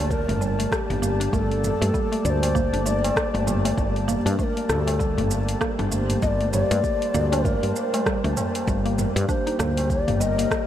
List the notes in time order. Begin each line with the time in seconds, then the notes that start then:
Already playing: D2 G3 A#3 D4 G4 D5 A5, impact
0.10 A#4, kick, shaker
0.28 G1 A3, mid tom, open hi-hat, tabla ge
0.41 G3, tabla na, tabla tin, shaker
0.59 A3, open hi-hat, shaker
0.71 G4, kick, cross-stick, shaker
0.90 G1, mid tom, open hi-hat
1.02 A#3 D5, shaker
1.20 D4, open hi-hat, tabla ge, shaker
1.33 G1 A3 A#4, kick, shaker
1.38 A4
1.51 open hi-hat
1.64 mid tom, shaker
1.81 G2 A3, open hi-hat, shaker
1.94 G3, kick, shaker
2.12 A3, open hi-hat
2.25 D2 D5, tabla ge, shaker
2.30 C5
2.43 open hi-hat, tabla na, tabla tin, shaker
2.55 A#3, kick, tabla ge, shaker
2.73 G1 D4, open hi-hat
2.86 A3 D5, tabla tin, shaker
3.04 open hi-hat, tabla na, shaker
3.16 kick, cross-stick, shaker
3.34 G1 A3, open hi-hat
3.47 G3, mid tom, tabla na, shaker
3.65 A3, open hi-hat, tabla na, shaker
3.77 G1, kick, shaker
3.96 open hi-hat
4.08 A#3, mid tom, shaker
4.26 G2 D4, open hi-hat, shaker
4.39 A3 C5, kick, shaker
4.43 A#4
4.57 open hi-hat
4.69 D2 A4, cross-stick, tabla ge, shaker
4.87 A3, open hi-hat, tabla na, tabla tin, shaker
4.99 G3, kick, shaker
5.17 G1 A3, mid tom, open hi-hat, tabla ge
5.31 tabla na, tabla tin, shaker
5.49 open hi-hat, shaker
5.53 C5
5.61 A#3, kick, cross-stick, shaker
5.79 G1 D4, mid tom, open hi-hat
5.92 A3, shaker
6.10 open hi-hat, tabla ge, shaker
6.22 G1 D#5, kick, shaker
6.27 D5
6.41 A3, open hi-hat
6.53 G3 D5, mid tom, shaker
6.71 G2 A3, open hi-hat, shaker
6.84 kick, shaker
7.02 open hi-hat
7.14 D2 A#3, tabla ge, shaker
7.32 D4, open hi-hat, tabla na, tabla tin, shaker
7.44 A3 A#4, kick, tabla ge, shaker
7.63 G2, open hi-hat
7.75 tabla tin, shaker
7.94 A3, open hi-hat, tabla na, shaker
8.06 G3, kick, cross-stick, shaker
8.24 D2 A3, open hi-hat
8.37 mid tom, tabla na, shaker
8.55 open hi-hat, tabla na, shaker
8.67 G1 G3, kick, shaker
8.86 A#3, open hi-hat
8.98 mid tom, shaker
9.16 G2, open hi-hat, shaker
9.29 D4 C5, kick, shaker
9.47 D#4, open hi-hat
9.59 D2 A#3 C5 D5, cross-stick, tabla ge, shaker
9.77 open hi-hat, tabla na, tabla tin, shaker
9.90 D5, kick, shaker
10.08 G1 A#3 A#4, mid tom, open hi-hat, tabla ge
10.20 G3 D#5, tabla na, tabla tin, shaker
10.38 A#3, open hi-hat, shaker
10.51 kick, cross-stick, shaker